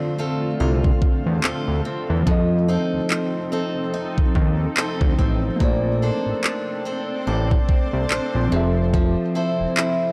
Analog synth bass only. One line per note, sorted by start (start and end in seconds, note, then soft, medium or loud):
0.60 0.92 C2 loud
1.26 1.39 E2 medium
1.44 1.53 D2 soft
1.68 1.81 D2 medium
2.10 2.23 E2 medium
2.27 2.77 F2 loud
2.93 3.00 D#2 soft
4.18 4.25 D#2 soft
4.35 4.67 D#2 loud
5.01 5.14 D2 medium
5.19 5.50 A1 medium
5.61 6.11 A#1 loud
6.26 6.33 A1 soft
7.27 7.59 A1 loud
7.93 8.06 C2 medium
8.11 8.20 A#1 medium
8.35 8.48 A#1 medium
8.52 9.16 F1 loud
9.60 9.67 F1 soft